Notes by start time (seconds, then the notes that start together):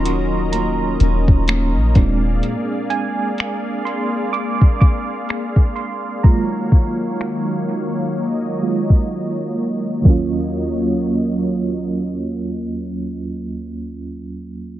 Already playing: D#1 D#3 F#3 A#3 C#4 F4 A#4 D#5 A#5 C6 C#6
0.05 F#4, closed hi-hat
0.52 A#3 A#5, closed hi-hat
1.00 D#1 C#4, closed hi-hat
1.28 D#1, kick
1.48 A#3, finger snap, closed hi-hat
1.76 A#1
1.95 D#1 A#2 G#3 A#3 C4 D4 G#4 D5 F5, kick, closed hi-hat
2.43 closed hi-hat
2.90 G#5, closed hi-hat
3.38 finger snap, closed hi-hat
3.85 C6, closed hi-hat
4.33 D6, closed hi-hat
4.61 kick
4.81 D6, kick, closed hi-hat
5.29 finger snap, closed hi-hat
5.56 kick
5.76 C6, closed hi-hat
6.23 D#3 F#3 G#3 A#3 F4 C#5 A#5, kick
6.72 kick
7.21 finger snap
8.15 D#5
8.62 G#3 A#3 F4
8.90 kick
10.02 D#2 F#3 A#3 C#5 D#5, kick, crash
10.08 C#4 F4